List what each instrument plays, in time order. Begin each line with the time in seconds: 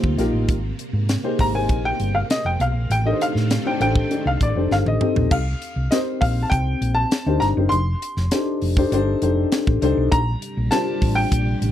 Already playing: string machine C3 G3 F4, grand piano A#3 D#4 F4 G4 C5
0.04 fingered electric bass D2, kick
0.18 fingered electric bass A#1, grand piano A#3 D#4 F4 G4 A#4, snare, closed hi-hat
0.33 fingered electric bass A1
0.48 fingered electric bass G#1, string machine A#3, kick, closed hi-hat
0.79 closed hi-hat
0.93 fingered electric bass G#2
1.09 snare, closed hi-hat
1.23 grand piano A#3 D#4 G4 G#4 C5
1.39 fingered electric bass G#1, grand piano A#5, kick, open hi-hat
1.53 grand piano A#3 D#4 G#4 A#4 C5 G#5
1.69 fingered electric bass A#1, kick, closed hi-hat
1.85 grand piano G5
2.00 fingered electric bass G1, closed hi-hat
2.15 grand piano F5
2.30 grand piano D#5, snare, closed hi-hat
2.45 fingered electric bass F1, grand piano G5
2.60 fingered electric bass B1, grand piano F5, closed hi-hat
2.75 fingered electric bass A#1
2.90 fingered electric bass A1, string machine D#3 A3 C4, grand piano G5, closed hi-hat
3.05 grand piano D4 D#4 G4 A4 A#4 D#5
3.12 grand piano C5
3.21 grand piano F5, closed hi-hat
3.35 fingered electric bass A2, snare
3.50 snare, closed hi-hat
3.65 grand piano D4 D#4 G4 A4 C5 G5
3.80 fingered electric bass A1, grand piano D4 D#4 G4 A4 C5 G5, closed hi-hat
3.95 kick
4.10 grand piano D4 D#4 G4 A4 D5, closed hi-hat
4.25 fingered electric bass C2, grand piano F5
4.41 fingered electric bass A1, grand piano D5, kick, closed hi-hat
4.55 fingered electric bass F1, grand piano D4 D#4 G4 A4 C5
4.71 fingered electric bass G1, grand piano F5, snare
4.86 fingered electric bass A1, grand piano D#5, high tom
5.00 grand piano C4 D#4 G4 A4 D#5, mid tom
5.16 fingered electric bass A#1, floor tom
5.31 fingered electric bass C2, grand piano F5, kick, crash
5.62 closed hi-hat
5.76 fingered electric bass C2
5.91 grand piano C4 D#4 G4 A#4 C5 D#5, snare, closed hi-hat
6.21 fingered electric bass A#1, grand piano F5, kick, open hi-hat
6.43 grand piano A5
6.50 fingered electric bass C2, grand piano G5, kick, closed hi-hat
6.81 fingered electric bass A#1, closed hi-hat
6.95 grand piano A5
7.11 snare, closed hi-hat
7.26 fingered electric bass D2, grand piano D4 D#4 G4 A#4 C5
7.40 fingered electric bass G1, grand piano A#5, snare, closed hi-hat
7.57 fingered electric bass F#1, grand piano D4 D#4 G4 A#4 C5
7.69 fingered electric bass F1, grand piano C6, closed hi-hat
8.02 closed hi-hat
8.17 fingered electric bass F1, snare
8.31 grand piano D4 D#4 G4 A4 C5, snare, closed hi-hat
8.62 fingered electric bass F1, open hi-hat
8.77 grand piano D4 D#4 G4 A4 C5, kick
8.92 fingered electric bass G1, grand piano D4 D#4 G4 A4 C5, closed hi-hat
9.22 fingered electric bass F1, grand piano D4 D#4 G4 A4 C5, closed hi-hat
9.52 snare, closed hi-hat
9.67 fingered electric bass A1, kick
9.82 fingered electric bass C2, grand piano D4 D#4 G4 A4 C5, closed hi-hat
9.97 fingered electric bass B1
10.12 fingered electric bass A#1, string machine C3 G3 D4, grand piano A#5, kick, closed hi-hat
10.42 closed hi-hat
10.57 fingered electric bass A#1
10.71 grand piano D4 F4 G4 A#4 C5 A5, snare, closed hi-hat
11.02 fingered electric bass A1, kick, open hi-hat
11.15 grand piano G5
11.32 fingered electric bass A#1, kick, closed hi-hat
11.62 fingered electric bass A1, closed hi-hat